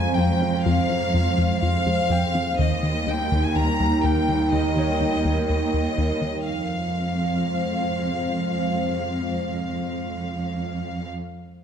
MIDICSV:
0, 0, Header, 1, 7, 480
1, 0, Start_track
1, 0, Key_signature, -4, "minor"
1, 0, Tempo, 483871
1, 650, Time_signature, 4, 2, 24, 8
1, 11546, End_track
2, 0, Start_track
2, 0, Title_t, "Grand piano"
2, 0, Program_c, 0, 0
2, 0, Control_c, 0, 64, 127
2, 0, Note_on_c, 0, 82, 40
2, 611, Note_off_c, 0, 82, 0
2, 2099, Note_on_c, 0, 79, 40
2, 2588, Control_c, 0, 64, 0
2, 2745, Control_c, 0, 64, 127
2, 3495, Note_off_c, 0, 79, 0
2, 4745, Note_on_c, 0, 73, 34
2, 6137, Note_off_c, 0, 73, 0
2, 6430, Control_c, 0, 64, 0
2, 6561, Control_c, 0, 64, 127
2, 10269, Control_c, 0, 64, 0
2, 11546, End_track
3, 0, Start_track
3, 0, Title_t, "Violin section"
3, 0, Program_c, 1, 48
3, 0, Note_on_c, 1, 80, 65
3, 157, Note_off_c, 1, 80, 0
3, 159, Note_on_c, 1, 79, 57
3, 636, Note_on_c, 1, 77, 64
3, 644, Note_off_c, 1, 79, 0
3, 1583, Note_off_c, 1, 77, 0
3, 1604, Note_on_c, 1, 77, 74
3, 2547, Note_off_c, 1, 77, 0
3, 2573, Note_on_c, 1, 75, 64
3, 3042, Note_off_c, 1, 75, 0
3, 3056, Note_on_c, 1, 79, 64
3, 3413, Note_off_c, 1, 79, 0
3, 3414, Note_on_c, 1, 80, 59
3, 3532, Note_off_c, 1, 80, 0
3, 3532, Note_on_c, 1, 82, 65
3, 4009, Note_on_c, 1, 79, 56
3, 4011, Note_off_c, 1, 82, 0
3, 4489, Note_off_c, 1, 79, 0
3, 4492, Note_on_c, 1, 75, 57
3, 5432, Note_off_c, 1, 75, 0
3, 5449, Note_on_c, 1, 75, 47
3, 6390, Note_off_c, 1, 75, 0
3, 6411, Note_on_c, 1, 77, 40
3, 11004, Note_off_c, 1, 77, 0
3, 11546, End_track
4, 0, Start_track
4, 0, Title_t, "Analog synth pad"
4, 0, Program_c, 2, 89
4, 0, Note_on_c, 2, 56, 51
4, 0, Note_on_c, 2, 60, 54
4, 0, Note_on_c, 2, 72, 53
4, 0, Note_on_c, 2, 77, 55
4, 2531, Note_off_c, 2, 60, 0
4, 2532, Note_off_c, 2, 56, 0
4, 2532, Note_off_c, 2, 72, 0
4, 2532, Note_off_c, 2, 77, 0
4, 2572, Note_on_c, 2, 63, 52
4, 2573, Note_on_c, 2, 55, 52
4, 2573, Note_on_c, 2, 70, 55
4, 2577, Note_on_c, 2, 79, 57
4, 6410, Note_on_c, 2, 56, 51
4, 6410, Note_on_c, 2, 60, 48
4, 6411, Note_off_c, 2, 55, 0
4, 6411, Note_off_c, 2, 63, 0
4, 6411, Note_off_c, 2, 70, 0
4, 6412, Note_on_c, 2, 77, 47
4, 6413, Note_off_c, 2, 79, 0
4, 6413, Note_on_c, 2, 72, 46
4, 11004, Note_off_c, 2, 56, 0
4, 11004, Note_off_c, 2, 60, 0
4, 11005, Note_off_c, 2, 72, 0
4, 11005, Note_off_c, 2, 77, 0
4, 11546, End_track
5, 0, Start_track
5, 0, Title_t, "Synth arpeggio sound"
5, 0, Program_c, 3, 84
5, 176, Note_on_c, 3, 53, 67
5, 318, Note_off_c, 3, 53, 0
5, 414, Note_on_c, 3, 60, 49
5, 557, Note_off_c, 3, 60, 0
5, 652, Note_on_c, 3, 53, 75
5, 795, Note_off_c, 3, 53, 0
5, 1132, Note_on_c, 3, 65, 47
5, 1275, Note_off_c, 3, 65, 0
5, 1371, Note_on_c, 3, 53, 67
5, 1515, Note_off_c, 3, 53, 0
5, 1614, Note_on_c, 3, 65, 53
5, 1757, Note_off_c, 3, 65, 0
5, 1853, Note_on_c, 3, 56, 51
5, 1996, Note_off_c, 3, 56, 0
5, 2093, Note_on_c, 3, 53, 63
5, 2236, Note_off_c, 3, 53, 0
5, 2329, Note_on_c, 3, 60, 50
5, 2473, Note_off_c, 3, 60, 0
5, 2569, Note_on_c, 3, 51, 73
5, 2713, Note_off_c, 3, 51, 0
5, 3051, Note_on_c, 3, 63, 47
5, 3194, Note_off_c, 3, 63, 0
5, 3291, Note_on_c, 3, 51, 68
5, 3435, Note_off_c, 3, 51, 0
5, 3532, Note_on_c, 3, 63, 49
5, 3675, Note_off_c, 3, 63, 0
5, 3771, Note_on_c, 3, 55, 46
5, 3914, Note_off_c, 3, 55, 0
5, 4013, Note_on_c, 3, 51, 62
5, 4156, Note_off_c, 3, 51, 0
5, 4254, Note_on_c, 3, 58, 45
5, 4397, Note_off_c, 3, 58, 0
5, 4491, Note_on_c, 3, 51, 65
5, 4634, Note_off_c, 3, 51, 0
5, 4971, Note_on_c, 3, 63, 45
5, 5115, Note_off_c, 3, 63, 0
5, 5212, Note_on_c, 3, 51, 64
5, 5355, Note_off_c, 3, 51, 0
5, 5448, Note_on_c, 3, 63, 50
5, 5592, Note_off_c, 3, 63, 0
5, 5684, Note_on_c, 3, 55, 44
5, 5829, Note_off_c, 3, 55, 0
5, 5928, Note_on_c, 3, 51, 58
5, 6073, Note_off_c, 3, 51, 0
5, 6169, Note_on_c, 3, 58, 38
5, 6313, Note_off_c, 3, 58, 0
5, 11546, End_track
6, 0, Start_track
6, 0, Title_t, "Analog synth bass"
6, 0, Program_c, 4, 38
6, 174, Note_on_c, 4, 41, 68
6, 317, Note_off_c, 4, 41, 0
6, 415, Note_on_c, 4, 53, 51
6, 557, Note_off_c, 4, 53, 0
6, 655, Note_on_c, 4, 41, 73
6, 797, Note_off_c, 4, 41, 0
6, 888, Note_on_c, 4, 53, 45
6, 1033, Note_off_c, 4, 53, 0
6, 1131, Note_on_c, 4, 41, 50
6, 1275, Note_off_c, 4, 41, 0
6, 1369, Note_on_c, 4, 41, 65
6, 1513, Note_off_c, 4, 41, 0
6, 1608, Note_on_c, 4, 41, 48
6, 1753, Note_off_c, 4, 41, 0
6, 1846, Note_on_c, 4, 41, 51
6, 1991, Note_off_c, 4, 41, 0
6, 2082, Note_on_c, 4, 41, 67
6, 2228, Note_off_c, 4, 41, 0
6, 2331, Note_on_c, 4, 53, 48
6, 2475, Note_off_c, 4, 53, 0
6, 2567, Note_on_c, 4, 39, 76
6, 2711, Note_off_c, 4, 39, 0
6, 2806, Note_on_c, 4, 51, 47
6, 2951, Note_off_c, 4, 51, 0
6, 3047, Note_on_c, 4, 39, 45
6, 3192, Note_off_c, 4, 39, 0
6, 3290, Note_on_c, 4, 39, 60
6, 3434, Note_off_c, 4, 39, 0
6, 3524, Note_on_c, 4, 39, 49
6, 3670, Note_off_c, 4, 39, 0
6, 3769, Note_on_c, 4, 39, 47
6, 3913, Note_off_c, 4, 39, 0
6, 4007, Note_on_c, 4, 39, 70
6, 4151, Note_off_c, 4, 39, 0
6, 4250, Note_on_c, 4, 51, 47
6, 4394, Note_off_c, 4, 51, 0
6, 4484, Note_on_c, 4, 39, 65
6, 4630, Note_off_c, 4, 39, 0
6, 4722, Note_on_c, 4, 51, 43
6, 4869, Note_off_c, 4, 51, 0
6, 4966, Note_on_c, 4, 39, 48
6, 5111, Note_off_c, 4, 39, 0
6, 5204, Note_on_c, 4, 39, 54
6, 5350, Note_off_c, 4, 39, 0
6, 5449, Note_on_c, 4, 39, 43
6, 5593, Note_off_c, 4, 39, 0
6, 5690, Note_on_c, 4, 39, 40
6, 5834, Note_off_c, 4, 39, 0
6, 5931, Note_on_c, 4, 39, 64
6, 6075, Note_off_c, 4, 39, 0
6, 6165, Note_on_c, 4, 51, 43
6, 6310, Note_off_c, 4, 51, 0
6, 11546, End_track
7, 0, Start_track
7, 0, Title_t, "Cello section"
7, 0, Program_c, 5, 48
7, 0, Note_on_c, 5, 41, 41
7, 2533, Note_off_c, 5, 41, 0
7, 2573, Note_on_c, 5, 39, 49
7, 6173, Note_off_c, 5, 39, 0
7, 6414, Note_on_c, 5, 41, 36
7, 11006, Note_off_c, 5, 41, 0
7, 11546, End_track
0, 0, End_of_file